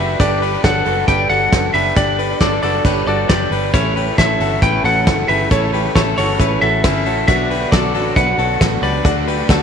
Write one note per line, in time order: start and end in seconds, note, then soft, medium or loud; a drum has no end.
0.00 0.16 F#1 medium
0.00 0.18 D3 medium
0.00 0.20 A3 medium
0.00 0.19 D4 medium
0.00 0.20 D4 loud
0.00 0.22 F#4 medium
0.00 0.21 F#4 medium
0.00 0.19 G4 medium
0.00 0.21 A4 medium
0.00 0.20 B4 medium
0.00 0.22 D5 loud
0.00 0.17 E5 medium
0.00 0.22 E5 medium
0.19 0.56 G1 loud
0.19 0.53 G3 medium
0.19 0.53 B3 medium
0.19 0.38 D4 medium
0.19 0.42 D4 medium
0.19 0.52 D4 medium
0.19 0.42 G4 loud
0.19 0.38 G4 medium
0.19 0.38 A4 medium
0.19 0.51 A4 medium
0.19 0.38 B4 loud
0.19 0.66 D5 loud
0.19 kick loud
0.19 hi-hat pedal medium
0.19 ride medium
0.42 0.59 D4 medium
0.42 0.59 G4 medium
0.42 0.65 G4 medium
0.42 0.59 A4 medium
0.42 0.60 B4 medium
0.42 0.64 B4 medium
0.42 open hi-hat medium
0.52 0.85 B3 soft
0.52 0.86 D4 medium
0.52 0.86 A4 medium
0.64 0.82 G1 loud
0.64 0.81 D4 medium
0.64 0.87 D4 medium
0.64 0.82 G4 medium
0.64 0.85 A4 medium
0.64 0.82 A4 medium
0.64 0.82 C#5 medium
0.64 1.08 F#5 loud
0.64 kick loud
0.64 snare medium
0.64 hi-hat pedal medium
0.64 ride medium
0.85 1.04 F#1 loud
0.85 1.50 G3 medium
0.85 1.51 B3 medium
0.85 1.03 D4 medium
0.85 1.52 D4 medium
0.85 1.09 F#4 medium
0.85 1.03 G4 medium
0.85 1.03 A4 medium
0.85 1.08 A4 medium
0.85 1.54 A4 medium
0.85 1.03 B4 medium
0.85 open hi-hat medium
1.07 1.26 G1 loud
1.07 1.25 D4 loud
1.07 1.26 G4 medium
1.07 1.31 G4 medium
1.07 1.26 A4 loud
1.07 1.30 B4 medium
1.07 1.26 D5 loud
1.07 1.29 G5 loud
1.07 kick medium
1.07 hi-hat pedal medium
1.07 ride medium
1.29 1.48 G1 loud
1.29 1.48 D4 medium
1.29 1.73 F#4 medium
1.29 1.48 G4 medium
1.29 1.48 A4 medium
1.29 1.72 A4 medium
1.29 1.48 D5 medium
1.29 1.71 F#5 loud
1.29 open hi-hat medium
1.51 1.71 F#1 medium
1.51 1.72 G3 medium
1.51 1.74 B3 medium
1.51 1.70 D4 medium
1.51 1.75 D4 medium
1.51 1.70 G4 medium
1.51 1.70 A4 medium
1.51 1.76 A4 medium
1.51 1.70 B4 medium
1.51 kick loud
1.51 snare loud
1.51 hi-hat pedal medium
1.51 ride medium
1.73 1.92 F#1 medium
1.73 1.95 G3 medium
1.73 1.96 B3 medium
1.73 1.92 D4 medium
1.73 1.97 D4 medium
1.73 1.92 G4 medium
1.73 1.95 G4 medium
1.73 1.92 A4 medium
1.73 1.97 A4 medium
1.73 1.92 B4 medium
1.73 1.97 B4 medium
1.73 1.97 E5 loud
1.73 open hi-hat medium
1.96 2.33 G1 loud
1.96 2.30 G3 medium
1.96 2.30 B3 medium
1.96 2.14 D4 medium
1.96 2.19 D4 medium
1.96 2.30 D4 medium
1.96 2.19 G4 loud
1.96 2.14 G4 medium
1.96 2.15 A4 medium
1.96 2.28 A4 medium
1.96 2.15 D5 loud
1.96 2.38 D5 loud
1.96 kick loud
1.96 hi-hat pedal medium
1.96 ride medium
2.19 2.37 D4 medium
2.19 2.37 G4 medium
2.19 2.42 G4 medium
2.19 2.37 A4 medium
2.19 2.41 B4 medium
2.19 2.37 B4 medium
2.19 open hi-hat medium
2.30 2.62 B3 soft
2.30 2.63 D4 medium
2.30 2.63 A4 medium
2.40 2.59 G1 medium
2.40 2.59 D4 medium
2.40 2.64 D4 medium
2.40 2.59 G4 medium
2.40 2.62 A4 medium
2.40 2.59 A4 medium
2.40 2.59 B4 medium
2.40 2.61 D5 medium
2.40 kick loud
2.40 snare loud
2.40 hi-hat pedal medium
2.40 ride medium
2.62 2.81 F#1 medium
2.62 3.27 G3 medium
2.62 3.29 B3 medium
2.62 2.81 D4 medium
2.62 3.30 D4 medium
2.62 2.86 F#4 medium
2.62 2.81 G4 medium
2.62 2.85 A4 medium
2.62 2.82 A4 medium
2.62 3.31 A4 medium
2.62 2.82 B4 medium
2.62 3.06 D5 loud
2.62 open hi-hat medium
2.85 3.03 G1 loud
2.85 3.03 D4 loud
2.85 3.03 G4 medium
2.85 3.08 G4 medium
2.85 3.03 A4 medium
2.85 3.08 B4 medium
2.85 3.03 C#5 loud
2.85 kick loud
2.85 hi-hat pedal medium
2.85 ride medium
3.06 3.25 G1 loud
3.06 3.25 D4 medium
3.06 3.30 F#4 medium
3.06 3.25 G4 medium
3.06 3.25 A4 medium
3.06 3.30 A4 medium
3.06 3.25 B4 medium
3.06 3.28 D5 medium
3.06 open hi-hat medium
3.29 3.48 F#1 medium
3.29 3.50 G3 medium
3.29 3.51 B3 medium
3.29 3.47 D4 medium
3.29 3.52 D4 medium
3.29 3.47 G4 medium
3.29 3.52 G4 medium
3.29 3.47 A4 medium
3.29 3.53 A4 medium
3.29 3.47 B4 medium
3.29 3.73 D5 medium
3.29 kick loud
3.29 snare loud
3.29 hi-hat pedal medium
3.29 ride medium
3.51 3.69 G1 medium
3.51 3.73 G3 medium
3.51 3.74 B3 medium
3.51 3.69 D4 medium
3.51 3.75 D4 medium
3.51 3.70 G4 medium
3.51 3.75 G4 medium
3.51 3.70 A4 medium
3.51 3.74 A4 medium
3.51 3.74 B4 medium
3.51 3.70 B4 medium
3.51 open hi-hat medium
3.73 4.10 A1 loud
3.73 4.07 A2 medium
3.73 7.25 C#3 medium
3.73 7.24 E3 medium
3.73 4.07 E3 medium
3.73 7.25 A3 medium
3.73 4.07 A3 medium
3.73 3.92 C#4 medium
3.73 3.97 C#4 medium
3.73 4.07 C#4 medium
3.73 7.25 E4 medium
3.73 3.96 E4 loud
3.73 3.92 E4 medium
3.73 3.92 A4 medium
3.73 4.05 A4 medium
3.73 4.18 C#5 medium
3.73 3.92 C#5 loud
3.73 kick loud
3.73 hi-hat pedal medium
3.73 ride medium
3.96 4.14 C#4 medium
3.96 4.14 E4 medium
3.96 4.19 G4 medium
3.96 4.14 A4 medium
3.96 4.18 B4 medium
3.96 4.14 E5 medium
3.96 open hi-hat medium
4.06 4.39 A3 soft
4.06 4.40 C#4 medium
4.06 4.40 A4 medium
4.18 4.36 A1 loud
4.18 4.36 C#4 medium
4.18 4.36 E4 medium
4.18 4.41 E4 medium
4.18 4.40 A4 medium
4.18 4.36 A4 medium
4.18 4.36 C#5 medium
4.18 4.59 E5 medium
4.18 kick loud
4.18 snare medium
4.18 hi-hat pedal medium
4.18 ride medium
4.39 4.58 G1 loud
4.39 5.04 E3 medium
4.39 5.05 A3 medium
4.39 4.58 C#4 medium
4.39 5.06 C#4 medium
4.39 4.58 E4 medium
4.39 4.63 F#4 medium
4.39 4.62 A4 medium
4.39 4.58 A4 medium
4.39 5.08 A4 medium
4.39 4.58 C#5 medium
4.39 open hi-hat medium
4.62 4.80 A1 loud
4.62 4.80 C#4 loud
4.62 4.80 E4 medium
4.62 4.85 E4 medium
4.62 4.80 A4 medium
4.62 4.84 B4 medium
4.62 4.80 C#5 loud
4.62 4.85 G5 loud
4.62 kick loud
4.62 hi-hat pedal medium
4.62 ride medium
4.84 5.09 A1 loud
4.84 5.02 C#4 medium
4.84 5.02 E4 medium
4.84 5.27 F#4 medium
4.84 5.26 A4 medium
4.84 5.02 A4 medium
4.84 5.02 C#5 medium
4.84 5.31 F#5 loud
4.84 open hi-hat medium
5.05 5.25 G1 medium
5.05 5.27 E3 medium
5.05 5.28 A3 medium
5.05 5.24 C#4 medium
5.05 5.29 C#4 medium
5.05 5.24 E4 medium
5.05 5.24 A4 medium
5.05 5.30 A4 medium
5.05 5.24 B4 medium
5.05 kick loud
5.05 snare loud
5.05 hi-hat pedal medium
5.05 ride medium
5.28 5.47 G1 medium
5.28 5.50 E3 medium
5.28 5.50 A3 medium
5.28 5.47 C#4 medium
5.28 5.51 C#4 medium
5.28 5.47 E4 medium
5.28 5.51 G4 medium
5.28 5.47 A4 medium
5.28 5.51 A4 medium
5.28 5.51 B4 medium
5.28 5.47 C#5 medium
5.28 5.51 E5 loud
5.28 open hi-hat medium
5.51 5.87 A1 loud
5.51 5.84 A2 medium
5.51 5.84 E3 medium
5.51 5.85 A3 medium
5.51 5.69 C#4 medium
5.51 5.83 C#4 medium
5.51 5.69 E4 medium
5.51 5.74 E4 medium
5.51 5.73 A4 loud
5.51 5.69 A4 loud
5.51 5.82 A4 medium
5.51 5.94 C#5 medium
5.51 5.69 C#5 loud
5.51 kick loud
5.51 hi-hat pedal medium
5.51 ride medium
5.73 5.91 C#4 medium
5.73 5.91 E4 medium
5.73 5.96 G4 medium
5.73 5.91 A4 medium
5.73 5.95 B4 medium
5.73 5.92 C#5 medium
5.73 open hi-hat medium
5.83 6.18 A3 soft
5.83 6.17 C#4 medium
5.83 6.17 A4 medium
5.95 6.13 A1 loud
5.95 6.13 C#4 medium
5.95 6.18 E4 medium
5.95 6.13 E4 medium
5.95 6.17 A4 medium
5.95 6.14 A4 medium
5.95 6.01 C#5 medium
5.95 6.14 C#5 medium
5.95 kick loud
5.95 snare medium
5.95 hi-hat pedal medium
5.95 ride medium
6.17 6.36 G1 medium
6.17 6.83 E3 medium
6.17 6.84 A3 medium
6.17 6.36 C#4 medium
6.17 6.85 C#4 medium
6.17 6.36 E4 medium
6.17 6.40 F#4 medium
6.17 6.40 A4 medium
6.17 6.36 A4 medium
6.17 6.85 A4 medium
6.17 6.61 C#5 medium
6.17 6.36 C#5 medium
6.17 open hi-hat medium
6.40 6.58 A1 loud
6.40 6.58 C#4 loud
6.40 6.62 E4 medium
6.40 6.58 E4 medium
6.40 6.58 A4 loud
6.40 6.62 B4 medium
6.40 6.58 C#5 loud
6.40 kick loud
6.40 hi-hat pedal medium
6.40 ride medium
6.61 6.85 A1 loud
6.61 6.80 C#4 medium
6.61 6.80 E4 medium
6.61 6.85 F#4 medium
6.61 6.84 A4 medium
6.61 6.80 A4 medium
6.61 7.26 E5 loud
6.61 6.80 E5 medium
6.61 open hi-hat medium
6.84 7.05 G1 loud
6.84 7.04 E3 medium
6.84 7.06 A3 medium
6.84 7.06 C#4 medium
6.84 7.02 C#4 medium
6.84 7.07 C#4 medium
6.84 7.06 E4 medium
6.84 7.02 E4 medium
6.84 7.02 A4 medium
6.84 7.07 A4 medium
6.84 7.02 C#5 medium
6.84 kick loud
6.84 snare loud
6.84 hi-hat pedal medium
6.84 ride medium
7.05 7.24 A1 medium
7.05 7.28 E3 medium
7.05 7.29 A3 medium
7.05 7.24 C#4 medium
7.05 7.29 C#4 medium
7.05 7.24 E4 medium
7.05 7.27 F#4 medium
7.05 7.28 A4 medium
7.05 7.24 A4 medium
7.05 7.29 A4 medium
7.05 7.24 C#5 medium
7.05 open hi-hat medium
7.27 7.64 B1 loud
7.27 7.61 B2 medium
7.27 9.03 D3 medium
7.27 9.03 F#3 medium
7.27 7.61 F#3 medium
7.27 9.03 B3 medium
7.27 7.62 B3 medium
7.27 7.46 D4 medium
7.27 7.61 D4 medium
7.27 7.51 D4 medium
7.27 9.03 F#4 medium
7.27 7.50 F#4 loud
7.27 7.46 F#4 medium
7.27 7.59 F#4 loud
7.27 7.46 B4 medium
7.27 7.46 D5 loud
7.27 7.71 E5 loud
7.27 kick loud
7.27 hi-hat pedal medium
7.27 ride medium
7.51 7.68 D4 medium
7.51 7.68 F#4 medium
7.51 7.73 G4 medium
7.51 7.72 B4 medium
7.51 7.68 B4 medium
7.51 7.68 D5 medium
7.51 open hi-hat medium
7.60 7.94 B3 soft
7.60 7.95 D4 medium
7.60 7.94 F#4 medium
7.72 7.94 B1 loud
7.72 7.90 D4 medium
7.72 7.90 F#4 medium
7.72 7.94 F#4 medium
7.72 7.94 A4 medium
7.72 7.90 B4 medium
7.72 8.18 D5 medium
7.72 7.90 D5 medium
7.72 kick loud
7.72 snare loud
7.72 hi-hat pedal medium
7.72 ride medium
7.94 8.13 A1 loud
7.94 8.59 F#3 medium
7.94 8.60 B3 medium
7.94 8.12 D4 medium
7.94 8.62 D4 medium
7.94 8.12 F#4 medium
7.94 8.16 F#4 medium
7.94 8.62 F#4 medium
7.94 8.16 A4 medium
7.94 8.12 B4 medium
7.94 8.12 C#5 medium
7.94 open hi-hat medium
8.16 8.35 B1 loud
8.16 8.34 D4 loud
8.16 8.34 F#4 loud
8.16 8.38 F#4 medium
8.16 8.34 B4 loud
8.16 8.38 B4 medium
8.16 8.34 D5 loud
8.16 8.85 F#5 loud
8.16 kick loud
8.16 hi-hat pedal medium
8.16 ride medium
8.38 8.56 B1 loud
8.38 8.56 D4 medium
8.38 8.56 F#4 medium
8.38 8.81 F#4 medium
8.38 8.80 A4 medium
8.38 8.56 B4 medium
8.38 8.57 C#5 medium
8.38 open hi-hat medium
8.59 8.79 A1 medium
8.59 8.80 F#3 medium
8.59 8.82 B3 medium
8.59 8.78 D4 medium
8.59 8.82 D4 medium
8.59 8.78 F#4 medium
8.59 8.83 F#4 medium
8.59 8.78 B4 medium
8.59 8.78 D5 medium
8.59 kick loud
8.59 snare loud
8.59 hi-hat pedal medium
8.59 ride medium
8.81 9.00 C#2 medium
8.81 9.04 F#3 medium
8.81 9.05 B3 medium
8.81 9.01 D4 medium
8.81 9.05 D4 medium
8.81 9.01 F#4 medium
8.81 9.05 F#4 medium
8.81 9.05 G4 medium
8.81 9.05 B4 medium
8.81 9.01 B4 medium
8.81 9.62 D5 medium
8.81 9.01 D5 medium
8.81 open hi-hat medium
9.04 9.41 D2 loud
9.04 9.38 D3 medium
9.04 9.62 D3 medium
9.04 9.62 F#3 medium
9.04 9.62 A3 medium
9.04 9.38 A3 medium
9.04 9.22 D4 loud
9.04 9.28 D4 medium
9.04 9.38 D4 medium
9.04 9.62 F#4 medium
9.04 9.23 F#4 medium
9.04 9.27 F#4 loud
9.04 9.36 F#4 medium
9.04 9.23 A4 medium
9.04 9.23 D5 loud
9.04 kick loud
9.04 hi-hat pedal medium
9.04 ride medium
9.28 9.45 D4 medium
9.28 9.45 F#4 medium
9.28 9.50 G4 medium
9.28 9.45 A4 medium
9.28 9.49 B4 medium
9.28 9.45 D5 medium
9.28 open hi-hat medium
9.37 9.62 A3 medium
9.37 9.62 D4 medium
9.37 9.62 F#4 medium
9.49 9.62 D2 loud
9.49 9.62 D4 medium
9.49 9.62 F#4 medium
9.49 9.62 A4 medium
9.49 9.62 D5 loud
9.49 kick loud
9.49 snare medium
9.49 hi-hat pedal medium
9.49 ride medium